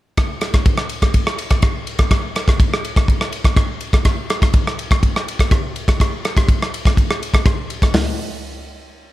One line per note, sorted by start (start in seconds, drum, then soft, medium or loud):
0.17 kick medium
0.17 cross-stick medium
0.17 ride medium
0.41 cross-stick medium
0.41 ride soft
0.54 kick medium
0.54 cross-stick medium
0.54 ride medium
0.66 kick medium
0.66 ride medium
0.78 cross-stick medium
0.89 ride medium
1.02 kick medium
1.02 cross-stick medium
1.02 ride medium
1.14 kick medium
1.14 ride medium
1.27 cross-stick medium
1.38 ride medium
1.50 kick medium
1.50 cross-stick medium
1.50 ride medium
1.62 kick loud
1.62 cross-stick medium
1.62 ride medium
1.87 ride medium
1.99 kick medium
1.99 cross-stick medium
1.99 ride medium
2.11 kick medium
2.11 cross-stick medium
2.11 ride medium
2.36 cross-stick medium
2.36 ride soft
2.48 kick medium
2.48 cross-stick medium
2.48 ride medium
2.60 kick medium
2.60 ride medium
2.74 cross-stick medium
2.85 ride medium
2.96 kick medium
2.96 cross-stick medium
2.96 ride soft
3.08 kick medium
3.08 ride soft
3.21 cross-stick medium
3.32 ride medium
3.44 kick medium
3.44 cross-stick medium
3.44 ride soft
3.56 kick medium
3.56 cross-stick medium
3.56 ride medium
3.81 ride soft
3.93 kick medium
3.93 cross-stick medium
3.93 ride soft
4.05 kick medium
4.05 cross-stick medium
4.05 ride medium
4.30 cross-stick medium
4.30 ride soft
4.42 kick medium
4.42 cross-stick medium
4.42 ride medium
4.53 kick medium
4.53 ride medium
4.67 cross-stick medium
4.79 ride medium
4.91 kick medium
4.91 cross-stick medium
4.91 ride medium
5.03 kick medium
5.03 ride medium
5.16 cross-stick medium
5.28 ride medium
5.39 kick medium
5.39 cross-stick medium
5.39 ride medium
5.51 kick loud
5.51 cross-stick medium
5.51 ride medium
5.76 ride soft
5.88 kick medium
5.88 cross-stick medium
5.88 ride medium
6.00 kick medium
6.00 cross-stick medium
6.00 ride medium
6.25 cross-stick medium
6.25 ride soft
6.37 kick medium
6.37 cross-stick medium
6.37 ride medium
6.49 kick medium
6.49 ride medium
6.62 cross-stick medium
6.74 ride medium
6.85 kick medium
6.85 cross-stick medium
6.85 ride soft
6.97 kick medium
6.97 ride soft
7.11 cross-stick medium
7.23 ride medium
7.34 kick medium
7.34 cross-stick medium
7.34 ride medium
7.46 kick loud
7.46 cross-stick medium
7.46 ride soft
7.70 ride soft
7.82 kick medium
7.82 cross-stick medium
7.82 ride medium
7.94 snare medium
7.94 floor tom medium
7.94 open hi-hat medium